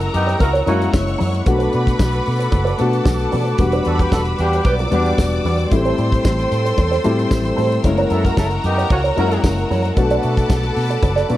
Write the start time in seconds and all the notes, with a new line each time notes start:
Already playing: G#3 A#3 C#4 E4 A#4 F#5 A#5 C#6 E6
0.00 muted clean electric guitar stroke, closed hi-hat
0.14 F#2 B3 D#4 G4, closed hi-hat
0.27 muted clean electric guitar stroke, closed hi-hat
0.39 C#2 E4 F#4 A#4, muted clean electric guitar stroke, kick, closed hi-hat, muted conga
0.53 A#3 E4 F#4 C#5, closed hi-hat
0.66 F#2 G#3 A#3 C#4 E4 F#4 C#5, closed hi-hat, muted conga, low conga
0.82 closed hi-hat
0.92 F#1 C#5 C#6, muted clean electric guitar stroke, kick, snare, tambourine, high conga
1.06 muted clean electric guitar stroke, closed hi-hat
1.18 F#2 A#3 E4 F#4 C#5, open hi-hat, high conga
1.32 muted clean electric guitar stroke, closed hi-hat
1.45 B1 A3 B3 D4 F#4 A4 B4 B5 D6, muted clean electric guitar stroke, kick, closed hi-hat, muted conga
1.59 A3 D4 F#4 B4, closed hi-hat
1.71 B2 A3 D4 F#4 D5, closed hi-hat
1.85 muted clean electric guitar stroke, kick, closed hi-hat
1.98 B1, muted clean electric guitar stroke, kick, snare, tambourine, high conga
2.12 muted clean electric guitar stroke, closed hi-hat
2.26 B2, open hi-hat
2.40 muted clean electric guitar stroke, closed hi-hat
2.52 F#1, muted clean electric guitar stroke, kick, closed hi-hat, muted conga, low conga
2.65 A3 D4 F#4 B4, closed hi-hat
2.78 B2 A3 B3 D4 F#4 A4 B4 A5, closed hi-hat, muted conga
2.92 muted clean electric guitar stroke, closed hi-hat
3.05 B1, muted clean electric guitar stroke, kick, snare, tambourine, high conga
3.19 muted clean electric guitar stroke, closed hi-hat
3.32 B2 A3 D4 F#4 B4, open hi-hat, high conga
3.46 muted clean electric guitar stroke, closed hi-hat
3.57 E1 G3 B3 D4 F#4 B4 B5 E6, muted clean electric guitar stroke, kick, closed hi-hat, muted conga
3.72 G3 D4 F#4 B4, closed hi-hat
3.85 E2 G3 D4 F#4 A4 D5, closed hi-hat
3.99 B3 G4 B4, kick, closed hi-hat
4.11 E1 D4 F#4 A4, muted clean electric guitar stroke, kick, snare, tambourine, high conga
4.25 muted clean electric guitar stroke, closed hi-hat
4.39 E2 B3 D4 G4, closed hi-hat
4.53 muted clean electric guitar stroke, closed hi-hat
4.65 B1 B3 G4 B4 D5 D6, muted clean electric guitar stroke, kick, closed hi-hat, muted conga
4.79 G3 D4 F#4 B4, closed hi-hat
4.91 E2 G3 B3 D4 F#4 G4 B4, closed hi-hat, muted conga, low conga
5.06 muted clean electric guitar stroke, closed hi-hat
5.18 E1, muted clean electric guitar stroke, kick, snare, tambourine, high conga
5.33 muted clean electric guitar stroke, closed hi-hat
5.45 E2 G3 D4 F#4 B4, open hi-hat, high conga
5.60 muted clean electric guitar stroke, closed hi-hat
5.71 A1 G3 A3 C4 E4 A4 C5 G5 C6, muted clean electric guitar stroke, kick, closed hi-hat, muted conga
5.85 A3 E4 G4 C5, closed hi-hat
5.98 A2 A3 E4 G4 D5, closed hi-hat
6.12 muted clean electric guitar stroke, kick, closed hi-hat
6.25 A1, muted clean electric guitar stroke, kick, snare, tambourine, high conga
6.39 muted clean electric guitar stroke, closed hi-hat
6.52 A2, closed hi-hat
6.66 muted clean electric guitar stroke, closed hi-hat
6.78 E2, muted clean electric guitar stroke, kick, closed hi-hat, muted conga, low conga
6.91 A3 E4 G4 C5, snare, closed hi-hat
7.04 A2 G3 A3 C4 E4 G4 C5, closed hi-hat, muted conga
7.18 muted clean electric guitar stroke, closed hi-hat
7.31 A1, muted clean electric guitar stroke, kick, snare, tambourine, high conga
7.44 muted clean electric guitar stroke, closed hi-hat
7.56 A2 A3 E4 G4 C5, open hi-hat, high conga
7.71 muted clean electric guitar stroke, closed hi-hat
7.83 F#1 G#3 A3 C#4 E4 A#4 F#5 A#5 C#6, muted clean electric guitar stroke, kick, closed hi-hat, muted conga
7.90 A#3
7.98 A#3 E4 F#4 C#5, closed hi-hat
8.10 F#2 A#3 C#4 E4 F#4 A4 D#5, closed hi-hat
8.25 E4 F#4 A#4, muted clean electric guitar stroke, kick, closed hi-hat
8.37 F#1 C#4 E4 A4, muted clean electric guitar stroke, kick, snare, tambourine, high conga
8.51 muted clean electric guitar stroke, closed hi-hat
8.64 F#2 B3 D#4 G4, closed hi-hat
8.78 muted clean electric guitar stroke, closed hi-hat
8.90 C#2 A#3 C#4 F#4, muted clean electric guitar stroke, kick, closed hi-hat, muted conga
9.04 A#3 E4 F#4 C#5, closed hi-hat
9.16 F#2 G#3 A#3 C#4 E4 F#4 A#4 C#5, closed hi-hat, muted conga, low conga
9.31 muted clean electric guitar stroke, closed hi-hat
9.44 F#1, muted clean electric guitar stroke, kick, snare, tambourine, high conga
9.58 muted clean electric guitar stroke, closed hi-hat
9.70 F#2 A#3 E4 F#4 C#5, open hi-hat, high conga
9.85 muted clean electric guitar stroke, closed hi-hat
9.96 B1 A3 B3 D4 F#4 A4 A5 B5 D6, muted clean electric guitar stroke, kick, closed hi-hat, muted conga
10.10 D4 F#4 A4 D5, closed hi-hat
10.23 B2 D4 F#4 A4 E5, closed hi-hat
10.37 muted clean electric guitar stroke, kick, closed hi-hat
10.49 B1, muted clean electric guitar stroke, kick, snare, tambourine, high conga
10.63 muted clean electric guitar stroke, closed hi-hat
10.76 B2, open hi-hat
10.90 muted clean electric guitar stroke, closed hi-hat
11.03 F#1, muted clean electric guitar stroke, kick, closed hi-hat, muted conga, low conga
11.16 D4 F#4 A4 D5, snare, closed hi-hat
11.28 B2 A3 B3 D4 F4 F#4 A4 D5, closed hi-hat, muted conga